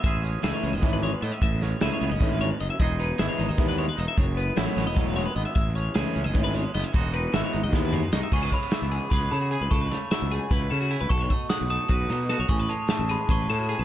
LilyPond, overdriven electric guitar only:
\new Staff \with { instrumentName = "Overdriven electric guitar" } { \time 7/8 \key cis \minor \tempo 4 = 152 r4 <e a cis' e'>8 r8 <e a cis' e'>8 r4 | r4 <e a cis' e'>8 r8 <e a cis' e'>8 r4 | r4 <e gis b e'>8 r8 <e gis b e'>8 r4 | r4 <fis a cis' fis'>8 r8 <fis a cis' fis'>8 r4 |
r4 <e a cis' e'>8 r8 <e a cis' e'>8 r4 | r4 <e gis b e'>8 r8 <e gis b e'>8 r4 | r2. r8 | r2. r8 |
r2. r8 | r2. r8 | }